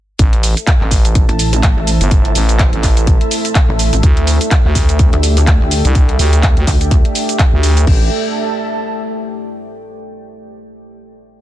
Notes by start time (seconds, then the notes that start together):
0.19 A1 A3 E4 A4 C5 E5, kick, closed hi-hat, shaker
0.33 closed hi-hat
0.38 E5
0.43 open hi-hat, shaker
0.57 closed hi-hat, shaker
0.62 A5
0.67 kick, clap, closed hi-hat, shaker
0.81 A1, clap
0.91 kick, open hi-hat, shaker
1.05 closed hi-hat, shaker
1.15 kick, closed hi-hat, shaker
1.29 A1, closed hi-hat
1.39 open hi-hat, shaker
1.53 closed hi-hat, shaker
1.63 kick, clap, closed hi-hat, shaker
1.77 A1
1.87 open hi-hat, shaker
2.01 G1, closed hi-hat, shaker
2.11 kick, closed hi-hat, shaker
2.25 closed hi-hat
2.35 A1, open hi-hat, shaker
2.49 closed hi-hat, shaker
2.59 kick, clap, closed hi-hat, shaker
2.73 A1, closed hi-hat
2.83 kick, clap, open hi-hat, shaker
2.97 closed hi-hat, shaker
3.07 kick, closed hi-hat, shaker
3.21 closed hi-hat
3.31 open hi-hat, shaker
3.45 closed hi-hat, shaker
3.55 kick, clap, closed hi-hat, shaker
3.69 A1
3.79 open hi-hat, shaker
3.93 A1, closed hi-hat, shaker
4.03 D2 D4 G4 D5 G5, kick, closed hi-hat, shaker
4.17 closed hi-hat
4.27 open hi-hat, shaker
4.41 closed hi-hat, shaker
4.51 kick, clap, closed hi-hat, shaker
4.65 D2, clap
4.75 kick, open hi-hat, shaker
4.89 closed hi-hat, shaker
4.99 kick, closed hi-hat, shaker
5.13 D2, closed hi-hat
5.23 open hi-hat, shaker
5.37 closed hi-hat, shaker
5.47 kick, clap, closed hi-hat, shaker
5.61 D2
5.71 open hi-hat, shaker
5.85 C2, closed hi-hat, shaker
5.95 kick, closed hi-hat, shaker
6.09 closed hi-hat
6.19 D2, open hi-hat, shaker
6.33 closed hi-hat, shaker
6.43 kick, clap, closed hi-hat, shaker
6.57 D2, closed hi-hat
6.67 D2, kick, clap, open hi-hat, shaker
6.81 closed hi-hat, shaker
6.91 kick, closed hi-hat, shaker
7.05 closed hi-hat
7.15 open hi-hat, shaker
7.29 closed hi-hat, shaker
7.39 kick, clap, closed hi-hat, shaker
7.53 D2
7.63 open hi-hat, shaker
7.77 closed hi-hat, shaker
7.87 A1 A4, kick, crash
7.95 E5
8.03 A5